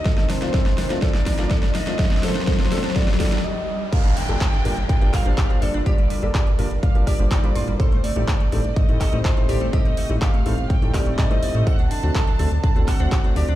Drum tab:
CC |--------------------------------|--------------------------------|x-------------------------------|--------------------------------|
HH |x---o-x-x---o-x-x---o-x-x---o-x-|x---o-x-x---o-x-x---o-x---------|x-x-o-x-x-x-o-x-x-x-o-x-x-x-o-x-|x-x-o-x-x-x-o-x-x-x-o-x-x-x-o-x-|
CP |--------------------------------|--------------------------------|--------x-----------x---x-------|--------x---------------x-------|
SD |o-o-o-o-o-o-o-o-o-o-o-o-o-o-o-o-|oooooooooooooooooooooooo--------|--------------------r-----------|--------------------r-----------|
BD |o-------o-------o---o---o-------|o-------o-------o---o-----------|o-------o-------o---o---o-------|o-------o-------o---o---o-------|

CC |--------------------------------|--------------------------------|--------------------------------|
HH |x-x-o---x-x-o-x-x-x-o-x-x-x-o-x-|x-x-o-x-x-x-o-x-x-x-o-x-x-x-o---|x-x-o-x-x-x-o-x-x-x-o-x-x-x-o-x-|
CP |--------x-----------x---x-------|--------x-----------x---x-------|--------x-----------x---x-------|
SD |--------------------r-----------|--------------------r-----------|--------------------r-----------|
BD |o-------o-------o---o---o-------|o-------o-------o---o---o-------|o-------o-------o---o---o-------|